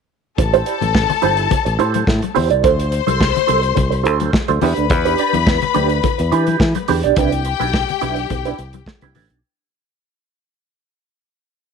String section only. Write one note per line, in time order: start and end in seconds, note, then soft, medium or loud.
0.38 2.32 A4 loud
0.38 2.32 A5 loud
2.64 4.31 C5 loud
2.64 4.31 C6 loud
4.62 6.85 B4 medium
4.62 6.85 B5 loud
7.16 9.10 G4 loud
7.16 9.10 G5 loud